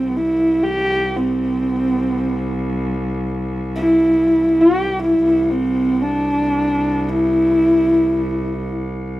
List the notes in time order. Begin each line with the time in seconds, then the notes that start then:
Already playing: C4
0.01 C2
0.16 E4
0.63 G4
1.17 C4
3.76 E4
4.61 G4
5.03 E4
5.21 C2
5.51 C4
6.01 D4
7.08 E4